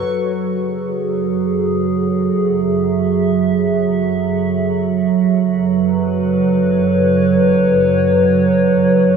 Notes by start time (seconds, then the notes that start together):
Already playing: F#3 F#4 A4 B4 C#5
0.07 F#1 F#3
0.41 G#4
2.27 E5
5.21 F#1 F#3
5.49 B4
6.18 C#5